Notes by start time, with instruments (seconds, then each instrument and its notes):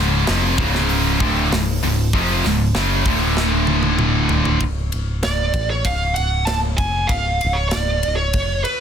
Already playing: picked electric bass C#1, distorted electric guitar C#2 G#2 C#3
0.26 picked electric bass F1, distorted electric guitar F2 C3 F3, snare, open hi-hat
0.58 picked electric bass C#1, distorted electric guitar C#2 G#2 C#3, kick
0.75 snare
0.89 open hi-hat
1.19 picked electric bass D1, distorted electric guitar D2 A2 D3, kick
1.52 picked electric bass C#1, distorted electric guitar C#2 G#2, snare, open hi-hat
1.82 picked electric bass C#1, distorted electric guitar C#2 G#2, open hi-hat
2.13 picked electric bass F1, distorted electric guitar F2 C3 F3, kick, open hi-hat
2.44 picked electric bass C#1, distorted electric guitar C#2 G#2, snare, open hi-hat
2.75 picked electric bass F#1, distorted electric guitar F#2 C#3 F#3, snare, open hi-hat
3.05 picked electric bass D1, distorted electric guitar D2 A2 D3, kick, open hi-hat
3.37 snare
3.67 high tom
3.83 high tom
3.99 mid tom
4.29 floor tom
4.45 floor tom
4.60 picked electric bass C#1, kick, ride
4.92 picked electric bass C#1, ride
5.23 picked electric bass C#1, lead electric guitar D5, snare, ride
5.54 picked electric bass A1, kick, ride
5.70 lead electric guitar C#5
5.85 picked electric bass C#1, lead electric guitar F5, kick, ride
6.15 picked electric bass C#1, lead electric guitar F#5, ride
6.45 lead electric guitar A5, snare, ride
6.77 picked electric bass F1, lead electric guitar G#5, kick, ride
7.07 picked electric bass C#1, lead electric guitar F5, kick, ride
7.41 picked electric bass C#1, ride
7.53 lead electric guitar C#5
7.69 lead electric guitar D5, snare, ride
7.75 picked electric bass C#1
8.03 picked electric bass C#1, ride
8.16 lead electric guitar C#5
8.33 picked electric bass F1, kick, ride
8.64 lead electric guitar B4, ride